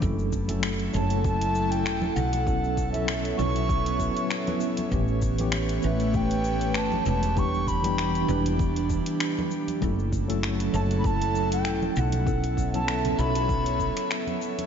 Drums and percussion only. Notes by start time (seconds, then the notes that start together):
0.02 kick, cabasa
0.19 cabasa
0.33 kick, cabasa
0.49 closed hi-hat, high conga, cabasa
0.63 finger snap, cabasa
0.79 closed hi-hat, cabasa
0.94 cabasa
1.10 closed hi-hat, cabasa
1.24 kick, cabasa
1.41 closed hi-hat, cabasa
1.55 cabasa
1.72 closed hi-hat, cabasa
1.86 finger snap, cabasa
2.02 high conga, cabasa
2.16 low conga, cabasa
2.33 closed hi-hat, high conga, cabasa
2.47 kick, cabasa
2.64 cabasa
2.77 kick, cabasa
2.94 closed hi-hat, high conga, cabasa
3.08 finger snap, cabasa
3.25 closed hi-hat, cabasa
3.39 low conga, cabasa
3.56 closed hi-hat, cabasa
3.69 kick, cabasa
3.86 closed hi-hat, cabasa
4.00 kick, cabasa
4.17 closed hi-hat, cabasa
4.31 finger snap, cabasa
4.47 closed hi-hat, high conga, cabasa
4.60 cabasa
4.77 closed hi-hat, high conga, cabasa
4.91 kick, cabasa
5.08 cabasa
5.22 kick, cabasa
5.38 closed hi-hat, high conga, cabasa
5.52 finger snap, cabasa
5.69 closed hi-hat, cabasa
5.82 cabasa
6.00 closed hi-hat, cabasa
6.13 kick, cabasa
6.31 closed hi-hat, cabasa
6.44 cabasa
6.61 closed hi-hat, cabasa
6.74 finger snap, cabasa
6.92 high conga, cabasa
7.06 low conga, cabasa
7.22 closed hi-hat, high conga, cabasa
7.37 kick, cabasa
7.54 cabasa
7.67 kick, cabasa
7.83 closed hi-hat, high conga, cabasa
7.98 finger snap, cabasa
8.15 closed hi-hat, cabasa
8.29 low conga, cabasa
8.46 closed hi-hat, cabasa
8.59 kick, cabasa
8.76 closed hi-hat, cabasa
8.90 kick, cabasa
9.06 closed hi-hat, cabasa
9.20 finger snap, cabasa
9.37 high conga, cabasa
9.51 cabasa
9.68 closed hi-hat, high conga, cabasa
9.82 kick, cabasa
9.99 cabasa
10.12 kick, cabasa
10.30 closed hi-hat, high conga, cabasa
10.43 finger snap, cabasa
10.60 closed hi-hat, cabasa
10.74 cabasa
10.91 closed hi-hat, cabasa
11.04 kick, cabasa
11.22 closed hi-hat, cabasa
11.35 cabasa
11.52 closed hi-hat, cabasa
11.65 finger snap, cabasa
11.82 high conga, cabasa
11.96 low conga, cabasa
12.12 closed hi-hat, high conga, cabasa
12.27 kick, cabasa
12.44 closed hi-hat, cabasa
12.57 kick, cabasa
12.74 closed hi-hat, high conga, cabasa
12.88 finger snap, cabasa
13.05 closed hi-hat, low conga, cabasa
13.19 low conga, cabasa
13.35 closed hi-hat, cabasa
13.49 kick, cabasa
13.66 closed hi-hat, cabasa
13.80 kick, cabasa
13.97 finger snap, closed hi-hat, cabasa
14.11 finger snap, cabasa
14.27 closed hi-hat, high conga, cabasa
14.42 cabasa
14.59 closed hi-hat, high conga, cabasa